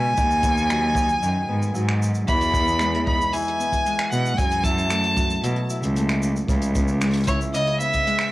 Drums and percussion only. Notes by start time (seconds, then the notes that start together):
0.17 kick, cabasa
0.31 cabasa
0.43 kick, cabasa
0.58 cabasa
0.70 finger snap, cabasa
0.95 kick, cabasa
1.09 cabasa
1.23 cabasa
1.62 cabasa
1.75 cabasa
1.89 finger snap
2.02 cabasa
2.15 cabasa
2.28 kick, closed hi-hat, cabasa
2.41 closed hi-hat, cabasa
2.54 kick, cabasa
2.68 cabasa
2.79 finger snap, closed hi-hat, cabasa
2.94 closed hi-hat
3.07 kick
3.21 cabasa
3.33 closed hi-hat, cabasa
3.36 cabasa
3.39 cabasa
3.42 cabasa
3.44 closed hi-hat, cabasa
3.60 cabasa
3.72 kick, closed hi-hat, cabasa
3.86 closed hi-hat, cabasa
3.98 finger snap, closed hi-hat
4.12 cabasa
4.26 cabasa
4.38 kick, closed hi-hat, cabasa
4.51 closed hi-hat, cabasa
4.64 kick, cabasa
4.78 cabasa
4.90 finger snap, closed hi-hat, cabasa
5.04 closed hi-hat
5.17 kick, cabasa
5.30 cabasa
5.43 closed hi-hat, cabasa
5.56 closed hi-hat
5.70 cabasa
5.83 closed hi-hat, cabasa
5.96 closed hi-hat, cabasa
6.09 finger snap, closed hi-hat
6.22 cabasa
6.36 cabasa
6.48 kick, closed hi-hat, cabasa
6.61 closed hi-hat, cabasa
6.75 kick, cabasa
6.88 cabasa
7.00 finger snap, closed hi-hat, cabasa
7.04 closed hi-hat
7.07 closed hi-hat
7.10 closed hi-hat
7.13 closed hi-hat
7.17 closed hi-hat
7.20 closed hi-hat
7.23 closed hi-hat
7.27 kick, cabasa
7.41 cabasa
7.54 closed hi-hat, cabasa
7.67 closed hi-hat
7.80 cabasa
7.93 kick, closed hi-hat, cabasa
8.07 closed hi-hat
8.19 finger snap, closed hi-hat